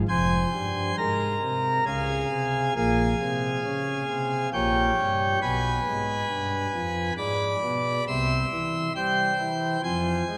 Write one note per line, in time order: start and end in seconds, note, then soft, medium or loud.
0.08 0.46 F1 medium
0.08 0.46 F2 medium
0.08 0.96 C5 medium
0.08 0.96 G#5 medium
0.08 0.96 C6 loud
0.53 0.91 G2 medium
0.98 1.36 G#2 medium
0.98 1.84 A#4 medium
0.98 1.84 A#5 loud
1.42 1.80 C3 medium
1.85 2.24 C#2 medium
1.85 2.24 C#3 medium
1.85 2.73 G#4 medium
1.85 2.73 F5 medium
1.85 2.73 G#5 loud
2.31 2.69 C3 medium
2.76 3.14 A#1 medium
2.76 3.14 A#2 medium
2.76 4.49 G#4 medium
2.76 4.49 F5 medium
2.76 4.49 G#5 loud
3.21 3.58 C3 medium
3.64 4.02 C#3 medium
4.09 4.46 C3 medium
4.53 4.91 A#1 medium
4.53 4.91 A#2 medium
4.53 5.39 G4 medium
4.53 5.39 C#5 medium
4.53 5.39 G5 loud
4.98 5.36 G2 medium
5.42 5.80 B1 medium
5.42 5.80 B2 medium
5.42 7.13 B4 medium
5.42 7.13 G#5 medium
5.42 7.13 B5 loud
5.86 6.23 G#2 medium
6.29 6.67 G2 medium
6.74 7.11 F2 medium
7.17 7.55 G#2 medium
7.17 8.04 D5 medium
7.17 8.04 B5 medium
7.17 8.04 D6 loud
7.63 8.00 B2 medium
8.08 8.45 C2 medium
8.08 8.45 C3 medium
8.08 8.93 E5 medium
8.08 8.93 C6 loud
8.08 8.92 E6 loud
8.52 8.89 E3 medium
8.95 9.32 G3 medium
8.95 9.81 C5 medium
8.95 9.81 G5 loud
8.95 9.81 C6 loud
9.39 9.77 E3 medium
9.84 10.22 F2 medium
9.84 10.22 F3 medium
9.84 10.38 C5 loud
9.84 10.38 G#5 medium
9.84 10.38 C6 loud
10.29 10.38 G#3 medium